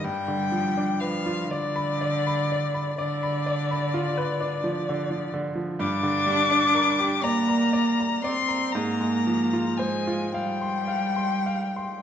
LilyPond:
<<
  \new Staff \with { instrumentName = "Violin" } { \time 12/8 \key g \phrygian \tempo 4. = 41 g''4 f''8 d''4. d''2~ d''8 r8 | \key f \dorian d'''4. bes''4 c'''8 bes''4 aes''8 g''4. | }
  \new Staff \with { instrumentName = "Grand piano" } { \time 12/8 \key g \phrygian g,16 d16 f16 d'16 b'16 f'16 d''16 b''16 d''16 b''16 d''16 b''16 d''16 b''16 d''16 b''16 f'16 b'16 d'16 f16 d16 f16 d16 f16 | \key f \dorian g,16 d16 g16 d'16 bes'16 g'16 d''16 bes''16 d''16 bes''16 d''16 bes''16 aes,16 aes16 f16 f'16 c''16 f'16 f''16 c'''16 f''16 c'''16 f''16 c'''16 | }
  \new Staff \with { instrumentName = "Cello" } { \clef bass \time 12/8 \key g \phrygian g4 f8 d4. d2~ d8 r8 | \key f \dorian d'4. bes4 c'8 bes4 aes8 g4. | }
>>